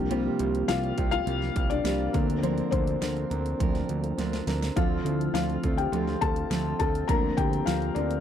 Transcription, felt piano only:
Already playing: F3 A#3 D4
0.11 C4 C5
0.68 F4 F5
1.11 F4 F5
1.70 D4 D5
2.13 A#3 C4 D4
2.43 C4 C5
2.71 C4 C5
4.76 F4 F5
5.05 F3 C4 E4
5.34 F4 F5
5.77 G4 G5
6.21 A4 A5
6.79 A4 A5
7.08 A#3 C4 D4 A#4 A#5
7.37 G4 G5
7.66 F4 F5
7.95 D4 D5

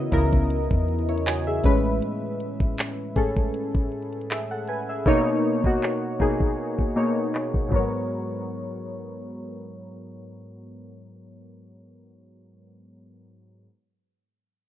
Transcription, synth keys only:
Already playing: C#3 B3 E4 F#4 D#5
0.12 C#3 B3 E4 A#4
1.09 E4 C#5
1.26 F#4 D#5 G#5
1.47 G#4 E5
1.64 A2 G#3 C#4 B4
3.16 A2 C#4 G#4 A4
4.31 G#4 E5
4.51 A4 F#5
4.68 B4 G#5
4.89 G#4 E5
5.06 B2 A#3 D#4 C#5
5.64 B2 A#3 D#4 F#4
6.19 B2 A#3 D#4 G#4
6.96 B2 A#3 D#4 C#5
7.69 G#2 F#3 B3
7.74 A#4 C#5

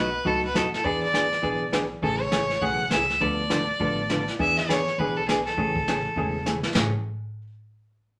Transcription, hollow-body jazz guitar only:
0.25 B2 F#3 A3 D#4 F#4
0.54 B2 F#3 A3 D#4 F#4
0.85 E3 B3 D4 G#4
1.13 E3 B3 D4 G#4
1.42 E3 B3 D4 G#4
1.72 E3 B3 D4 G#4
2.03 C#3 E3 A3 C#4 G#4
2.31 C#3 E3 A3 C#4 G#4
2.62 C#3 E3 A3 C#4 G#4
2.92 C#3 E3 A3 C#4 G#4
3.21 D3 F3 B3 D4 A4
3.50 D3 F3 B3 D4 A4
3.80 D3 F3 B3 D4 A4
4.10 D3 F3 B3 D4 A4
4.39 E3 B3 D4 G#4
4.69 E3 B3 D4 G#4
5.00 E3 B3 D4 G#4
5.28 E3 B3 D4 G#4
5.57 C#3 E3 A3 C#4 G#4
5.88 C#3 E3 A3 C#4 G#4
6.17 C#3 E3 A3 C#4 G#4
6.46 C#3 E3 A3 C#4 G#4
6.76 A2 C#3 E3 A3 C#4 G#4

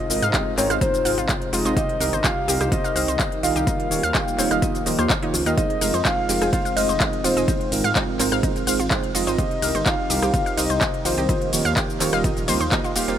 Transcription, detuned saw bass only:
0.10 G#1
0.23 G#2
0.58 G#1
0.70 G#1
1.05 G#1
1.18 G#1
1.53 F1
1.65 G#1
2.00 C2
2.13 G1
2.48 C2
2.61 C2
2.96 C2
3.08 C2
3.43 A#1
3.56 C2
3.91 D#1
4.03 D#2
4.38 D#1
4.51 D#1
4.86 D#1
4.99 D#2
5.34 C#2
5.46 D#2
5.81 F1
5.94 F2
6.29 F1
6.42 F1
6.77 F1
6.89 F1
7.24 D#1
7.37 F1
7.72 G#1
7.84 G#2
8.19 G#1
8.32 G#1
8.67 G#1
8.80 G#1
9.15 F1
9.27 G#1
9.62 C2
9.75 G1
10.10 C2
10.22 C2
10.57 C2
10.70 C2
11.05 A#1
11.18 C2
11.53 D#1
11.65 D#2
12.00 D#1
12.13 D#1
12.48 C#2
12.61 D#2
12.96 D#1
13.08 D#1

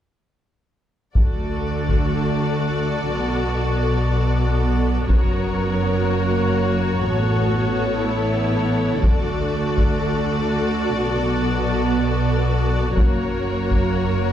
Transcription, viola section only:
1.16 A3 F#4
3.12 B3
5.09 F#4
6.07 A#3
7.06 B3
8.05 E4
9.04 A3 F#4
11.01 B3
12.98 A#3 F#4

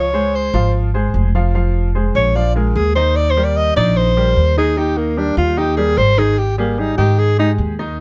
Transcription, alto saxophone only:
Already playing: C#5
0.36 C5
2.16 C#5
2.36 D5
2.56 F4
2.76 G#4
2.96 C5
3.16 D5
3.30 C5
3.44 D5
3.57 D#5
3.77 D5
3.97 C5
4.58 G#4
4.78 G4
4.97 A#3
5.18 D4
5.38 F4
5.58 G4
5.77 G#4
5.98 C5
6.19 G#4
6.39 G4
6.59 A#3
6.79 D#4
6.98 G4
7.19 G#4
7.40 D#4

